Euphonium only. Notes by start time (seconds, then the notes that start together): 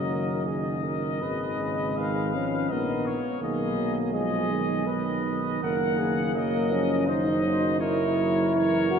Already playing: F#3
1.23 G#3
2.35 C#4
2.71 B3
3.41 A#3
4.13 G#3
5.63 A#3
6.72 C#4
7.09 D#4
7.80 E4
8.90 F#4